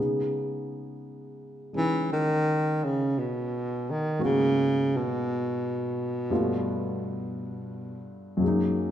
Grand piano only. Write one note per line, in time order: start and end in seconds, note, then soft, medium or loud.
0.00 4.18 C#3 soft
0.00 1.72 G#3 soft
0.00 4.19 B3 soft
0.00 1.75 D#4 soft
0.00 4.19 G#4 soft
1.73 4.18 G#3 soft
1.73 4.20 C#4 soft
1.73 4.21 D#4 soft
4.19 6.30 G#2 soft
4.19 6.30 G#3 soft
4.19 6.31 A#3 soft
4.19 6.30 B3 soft
4.19 6.31 F#4 soft
6.30 8.41 G2 soft
6.30 8.42 G3 soft
6.30 8.42 A3 soft
6.30 8.42 B3 soft
6.30 8.42 F4 medium
8.37 8.91 F#2 medium
8.37 8.91 F#3 soft
8.42 8.91 G#3 soft
8.42 8.91 A#3 soft
8.47 8.91 D#4 medium